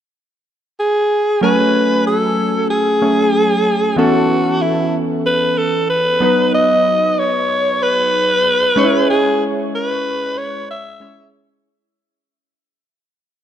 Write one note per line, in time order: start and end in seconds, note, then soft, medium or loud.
0.80 1.39 G#4 medium
1.41 2.98 F#3 medium
1.41 2.99 A3 medium
1.41 2.99 C#4 medium
1.41 2.03 B4 medium
1.41 3.00 G#5 medium
2.07 2.67 A4 medium
2.70 3.94 G#4 medium
3.02 3.98 F#3 soft
3.02 3.98 A3 soft
3.02 3.97 C#4 soft
3.02 3.98 G#4 soft
3.96 6.17 E3 medium
3.96 6.17 B3 medium
3.96 6.18 C#4 medium
3.96 4.63 F#4 medium
3.96 6.18 A4 medium
4.62 4.99 E4 medium
5.26 5.60 B4 medium
5.58 5.89 A4 medium
5.90 6.50 B4 medium
6.20 8.72 F#3 medium
6.20 8.73 B3 medium
6.20 8.73 D#4 medium
6.20 8.74 B4 medium
6.55 7.21 D#5 loud
7.19 7.84 C#5 medium
7.82 9.09 B4 loud
8.76 10.96 G#3 medium
8.76 10.96 C#4 medium
8.76 8.84 D#4 soft
8.76 10.97 C#5 medium
8.84 11.00 E4 medium
9.10 9.44 G#4 loud
9.75 10.40 B4 medium
10.38 10.69 C#5 loud
10.71 11.29 E5 loud
11.00 11.64 G#3 soft
11.00 11.64 C#4 soft
11.00 11.65 E4 soft
11.00 11.65 C#5 medium